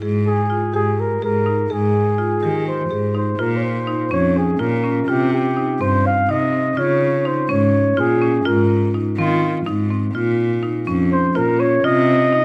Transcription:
0.01 0.60 G#2 medium
0.01 0.27 G#4 medium
0.26 0.71 G#4 medium
0.50 0.63 F4 medium
0.74 1.13 G#2 medium
0.74 0.99 G4 medium
0.74 1.01 G#4 medium
1.00 1.23 A#4 medium
1.22 1.61 G#2 medium
1.22 1.35 G#4 medium
1.22 1.74 A#4 medium
1.46 1.59 D#4 medium
1.70 2.29 G#2 medium
1.70 1.96 G#4 medium
1.70 2.67 G#4 medium
2.18 2.31 F4 medium
2.42 2.81 D#3 medium
2.42 2.68 G4 medium
2.68 3.12 C5 medium
2.90 3.30 G#2 medium
2.90 3.03 G#4 medium
3.14 3.27 D#4 medium
3.14 3.42 C5 medium
3.38 3.98 A#2 medium
3.38 3.64 F4 medium
3.38 3.58 A#4 medium
3.57 3.64 C#5 medium
3.63 4.11 C5 medium
3.87 4.00 D#4 medium
4.11 4.50 F2 medium
4.11 4.37 C#4 medium
4.11 4.39 C#5 medium
4.37 4.61 G#4 medium
4.59 4.99 A#2 medium
4.59 4.72 F4 medium
4.59 5.11 A#4 medium
4.84 4.96 C#4 medium
5.08 5.67 C3 medium
5.08 5.34 F4 medium
5.08 5.32 G4 medium
5.33 5.83 G4 medium
5.57 5.69 D#4 medium
5.80 6.20 G2 medium
5.80 6.06 C4 medium
5.80 6.08 C5 medium
6.06 6.32 F5 loud
6.28 6.68 C3 medium
6.28 6.42 D#4 medium
6.28 6.80 D#5 medium
6.53 6.66 C4 medium
6.77 7.36 C#3 medium
6.77 7.03 F4 medium
6.77 7.28 C#5 medium
7.25 7.38 D#4 medium
7.25 7.52 C5 medium
7.49 7.88 G#2 medium
7.49 7.75 C#4 medium
7.49 8.01 C#5 loud
7.97 8.37 A#2 medium
7.97 8.10 F4 medium
7.97 8.48 G#4 medium
8.22 8.35 C#4 medium
8.45 9.05 G#2 medium
8.45 8.71 F4 medium
8.45 8.94 A#4 medium
8.94 9.07 D#4 medium
9.18 9.57 D#3 medium
9.18 9.44 C4 medium
9.18 9.63 F4 medium
9.67 10.06 G#2 medium
9.67 9.79 D#4 medium
9.91 10.03 C4 medium
10.14 10.74 A#2 medium
10.14 10.40 F4 medium
10.63 10.76 D#4 medium
10.87 11.26 F2 medium
10.87 11.13 C#4 medium
11.12 11.38 C5 medium
11.35 11.75 A#2 medium
11.35 11.48 F4 medium
11.35 11.61 A#4 medium
11.60 11.73 C#4 medium
11.60 11.86 C#5 medium
11.83 12.43 C3 medium
11.83 12.10 F4 medium
11.83 12.45 D#5 loud
12.33 12.45 D#4 medium

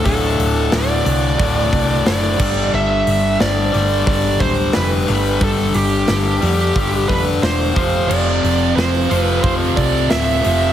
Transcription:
0.03 0.34 D1 loud
0.03 1.36 D2 loud
0.03 1.37 A2 loud
0.03 1.37 D3 loud
0.03 0.75 A4 medium
0.03 kick loud
0.03 open hi-hat medium
0.39 0.67 D1 medium
0.39 open hi-hat medium
0.72 1.01 D1 medium
0.72 2.06 D5 medium
0.72 snare loud
0.72 open hi-hat medium
1.06 1.34 C2 medium
1.06 open hi-hat medium
1.37 1.68 D1 loud
1.37 2.37 D2 medium
1.37 2.37 A2 medium
1.37 2.38 D3 medium
1.37 kick loud
1.37 open hi-hat medium
1.73 2.01 C2 medium
1.73 kick medium
1.73 open hi-hat medium
2.06 2.35 F#1 loud
2.06 2.70 D5 medium
2.06 snare loud
2.06 open hi-hat medium
2.38 2.68 G1 medium
2.38 3.74 G2 medium
2.38 3.72 D3 loud
2.38 3.71 G3 loud
2.38 kick loud
2.38 crash loud
2.73 3.02 G1 loud
2.73 3.40 E5 loud
3.07 3.35 G1 medium
3.07 open hi-hat medium
3.40 3.69 G1 medium
3.40 4.06 D5 medium
3.40 snare loud
3.40 open hi-hat medium
3.72 4.03 G1 medium
3.72 5.05 G2 medium
3.72 5.06 D3 medium
3.72 5.05 G3 loud
3.72 open hi-hat medium
4.07 4.35 G1 loud
4.07 4.42 D5 loud
4.07 kick loud
4.07 open hi-hat medium
4.40 4.69 D1 medium
4.40 4.75 C5 loud
4.40 kick medium
4.40 open hi-hat medium
4.73 5.04 F1 loud
4.73 5.43 B4 medium
4.73 snare loud
4.73 open hi-hat medium
5.06 5.37 G1 loud
5.06 6.39 G2 loud
5.06 6.40 D3 loud
5.06 6.40 G3 loud
5.06 open hi-hat medium
5.41 5.69 G1 loud
5.41 5.77 A4 loud
5.41 kick loud
5.41 open hi-hat medium
5.74 6.03 G1 medium
5.74 7.13 G4 medium
5.74 open hi-hat medium
6.08 6.37 G1 loud
6.08 snare loud
6.08 open hi-hat medium
6.41 6.71 F2 medium
6.41 7.74 G2 medium
6.41 7.74 D3 medium
6.41 7.74 G3 medium
6.41 open hi-hat medium
6.76 7.04 G1 loud
6.76 kick loud
6.76 open hi-hat medium
7.08 7.37 F1 medium
7.08 7.43 B4 medium
7.08 kick medium
7.08 open hi-hat medium
7.43 7.71 E1 loud
7.43 8.06 C5 loud
7.43 snare loud
7.43 open hi-hat medium
7.74 8.05 F1 medium
7.74 9.11 F2 medium
7.74 9.08 C3 loud
7.74 9.08 F3 loud
7.74 kick loud
7.74 open hi-hat medium
8.08 8.38 F1 loud
8.08 9.12 F2 medium
8.08 9.09 C3 medium
8.08 9.09 F3 loud
8.08 8.72 D5 loud
8.08 crash loud
8.44 8.72 F1 medium
8.44 open hi-hat medium
8.76 9.05 F1 loud
8.76 9.21 C5 loud
8.76 snare loud
8.76 open hi-hat medium
9.09 9.39 F1 medium
9.09 10.40 F2 medium
9.09 10.42 C3 medium
9.09 10.42 F3 medium
9.09 open hi-hat medium
9.21 9.39 B4 loud
9.43 9.72 F1 loud
9.43 9.52 C5 loud
9.43 kick loud
9.43 open hi-hat medium
9.77 10.06 C2 medium
9.77 10.08 D5 loud
9.77 kick medium
9.77 open hi-hat medium
10.10 10.40 D1 medium
10.10 10.73 E5 loud
10.10 snare loud
10.10 open hi-hat medium
10.41 10.73 F2 loud
10.41 10.73 C3 medium
10.41 10.73 F3 loud
10.41 open hi-hat medium
10.46 10.73 F1 medium

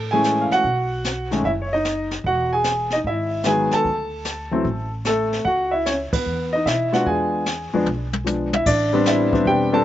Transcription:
0.00 0.47 A2 medium
0.00 0.13 A5 medium
0.11 0.63 E3 medium
0.11 0.63 G#3 soft
0.11 0.63 A3 medium
0.11 0.63 C#4 medium
0.11 0.41 G#4 medium
0.11 0.43 G#5 medium
0.24 snare soft
0.24 hi-hat pedal soft
0.41 0.51 F5 medium
0.51 1.29 F#4 medium
0.51 1.28 F#5 loud
0.51 muted upright bass stroke soft
0.51 snare soft
0.64 1.41 B1 medium
0.64 brush sweep soft
0.64 kick soft
1.04 snare soft
1.04 hi-hat pedal soft
1.31 1.43 D#3 medium
1.31 1.44 G#3 medium
1.31 1.44 A3 medium
1.31 1.44 C#4 medium
1.31 snare soft
1.44 2.21 F#1 medium
1.44 1.51 E4 medium
1.44 1.50 E5 medium
1.44 brush sweep soft
1.44 kick soft
1.62 1.72 C#5 medium
1.73 2.11 D#4 medium
1.73 2.10 D#5 medium
1.85 snare soft
1.85 hi-hat pedal soft
2.11 snare soft
2.24 3.01 E1 medium
2.24 2.52 F#4 medium
2.24 2.54 F#5 medium
2.24 brush sweep soft
2.24 kick soft
2.53 2.91 G#4 medium
2.53 2.90 G#5 medium
2.64 snare medium
2.64 hi-hat pedal soft
2.90 2.98 D#5 medium
2.90 snare soft
2.95 3.00 D#4 medium
3.03 3.68 G#1 medium
3.03 3.48 E5 medium
3.03 brush sweep soft
3.03 kick soft
3.08 3.44 E4 medium
3.43 3.86 D#3 medium
3.43 3.86 F#3 soft
3.43 3.86 G#3 soft
3.43 3.86 B3 medium
3.43 3.71 G#5 medium
3.43 snare soft
3.43 hi-hat pedal soft
3.48 3.72 G#4 medium
3.71 4.89 A5 loud
3.71 muted upright bass stroke soft
3.71 snare soft
3.75 4.90 A4 medium
3.85 4.61 D2 medium
3.85 brush sweep soft
3.85 kick soft
4.25 snare medium
4.25 hi-hat pedal medium
4.51 4.64 E3 medium
4.51 4.64 F#3 medium
4.51 4.64 A3 medium
4.51 4.65 C4 medium
4.64 5.41 A1 medium
4.64 brush sweep soft
4.64 kick soft
5.05 5.44 A3 medium
5.05 5.48 A4 medium
5.05 snare soft
5.05 hi-hat pedal soft
5.32 snare soft
5.45 6.08 C#2 medium
5.45 5.72 F#4 medium
5.45 5.73 F#5 medium
5.45 brush sweep soft
5.45 kick soft
5.71 5.85 E4 medium
5.71 5.84 E5 medium
5.86 5.94 C#4 medium
5.86 5.92 C#5 medium
5.86 snare medium
5.86 hi-hat pedal soft
6.13 6.52 B3 medium
6.13 6.54 B4 medium
6.13 muted upright bass stroke soft
6.13 kick medium
6.13 ride medium
6.26 6.63 E2 medium
6.26 brush sweep soft
6.53 6.67 D#4 medium
6.53 6.65 D#5 medium
6.65 7.03 B2 medium
6.65 6.92 E4 medium
6.65 6.94 E5 medium
6.65 snare soft
6.65 hi-hat pedal soft
6.92 7.43 G#3 soft
6.92 7.44 B3 soft
6.92 7.44 D4 medium
6.92 7.43 F4 soft
6.92 7.07 F#4 medium
6.92 7.07 F#5 medium
6.92 snare soft
7.06 7.69 E2 medium
7.06 8.23 G#4 medium
7.06 8.22 G#5 medium
7.06 brush sweep soft
7.06 kick soft
7.46 snare medium
7.46 hi-hat pedal soft
7.73 7.85 F2 medium
7.73 7.85 F3 medium
7.73 7.85 G#3 medium
7.73 7.86 B3 medium
7.73 7.86 D4 medium
7.86 8.62 B1 medium
7.86 high tom soft
8.13 high tom medium
8.24 8.50 F3 soft
8.24 8.50 G#3 soft
8.24 8.50 B3 soft
8.24 8.51 D4 soft
8.24 hi-hat pedal soft
8.24 high tom soft
8.53 8.66 E4 medium
8.53 8.67 E5 medium
8.53 high tom medium
8.66 9.42 A1 medium
8.66 8.93 D4 medium
8.66 9.08 D5 medium
8.66 brush sweep soft
8.66 kick medium
8.66 crash medium
8.93 9.30 G3 medium
8.93 9.31 B3 medium
8.93 9.31 C4 medium
8.93 9.31 D4 medium
9.05 9.44 E4 medium
9.05 9.48 E5 medium
9.05 snare medium
9.05 hi-hat pedal medium
9.32 9.70 G3 medium
9.32 9.70 B3 medium
9.32 9.70 C4 medium
9.32 9.71 D4 medium
9.32 kick medium
9.45 9.85 E1 medium
9.45 9.72 G4 medium
9.45 9.72 G5 medium
9.45 brush sweep soft
9.45 kick soft
9.72 9.85 G3 medium
9.72 9.85 B3 medium
9.72 9.85 C4 medium
9.72 9.85 D4 medium
9.72 9.85 A4 medium
9.72 9.85 A5 medium

